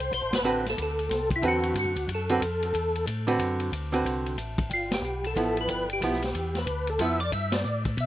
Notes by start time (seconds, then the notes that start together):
Already playing: C2 C5
0.00 ride
0.12 B1 C5, kick, ride
0.22 A1
0.31 F#1 B4, snare, ride
0.43 A1 D3 C4 F#4 B4, hi-hat pedal
0.66 A4, snare, ride
0.77 D2, kick, ride
0.82 A4
0.99 ride
1.10 C2, kick, snare, hi-hat pedal, ride
1.31 kick, ride
1.36 E4
1.42 E2 D3 C4 F#4 B4, kick, ride
1.48 F#4
1.63 ride
1.74 G2, kick, hi-hat pedal, ride
1.79 F#4
1.84 F#2
1.96 D2, ride
2.08 F#2, kick, ride
2.15 A4
2.29 D3 C4 F#4 B4, ride
2.41 F2, kick, hi-hat pedal, ride
2.62 ride
2.74 E2, kick, ride
2.95 ride
3.06 A2, kick, hi-hat pedal, ride
3.27 D3 C4 F#4 B4, ride
3.39 F#2, kick, ride
3.60 ride
3.72 D2, kick, hi-hat pedal, ride
3.92 D3 C4 F#4 B4, ride
4.05 C2, kick, ride
4.26 ride
4.38 A1, kick, hi-hat pedal, ride
4.58 kick, ride
4.70 G1 F4, kick, ride
4.91 G4, snare, ride
5.02 B1, hi-hat pedal
5.24 A4, ride
5.36 A1 F3 B3 E4, kick, ride
5.57 B4, ride
5.68 G1 B4, kick, hi-hat pedal, ride
5.90 G4, ride
6.01 B1 F3 B3 E4, kick, ride
6.13 snare
6.22 snare, ride
6.34 E2, kick, hi-hat pedal, ride
6.55 B4, snare, ride
6.66 D2, kick, ride
6.87 A4, ride
6.99 F2 F3 B3 E4 E5, kick, hi-hat pedal, ride
7.20 D5, ride
7.32 G2 E5, kick, ride
7.52 D5, snare, ride
7.64 A2, hi-hat pedal
7.85 kick, ride
7.97 B2 E5, kick, ride